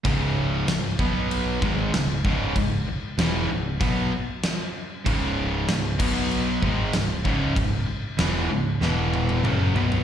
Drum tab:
CC |x---x---x---x---|x---x---x---x---|x---x-x-x---x---|x---x-----------|
SD |----o-------o---|----o-------o---|----o-------o---|----o---o-------|
T1 |----------------|----------------|----------------|----------oo----|
T2 |----------------|----------------|----------------|------------o---|
FT |----------------|----------------|----------------|--------------oo|
BD |o-----o---o---o-|o-------o-------|o-----o---o---o-|o---------------|